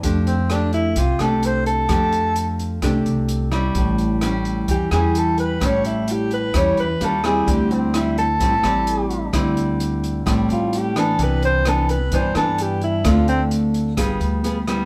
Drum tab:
HH |xxxxxxxx|xxxxxxxx|xxxxxxxx|xxxxxxxx|
SD |--r--r--|r---r--r|--r--r--|r---r--r|
BD |o---o---|o---o---|o---o---|o---o---|

HH |xxxxxxxx|xxxxxxxx|xxxxxxxx|xxxxxxxx|
SD |--r--r--|r---r--r|--r--r--|r---r--r|
BD |o---o---|o---o---|o---o---|o---o---|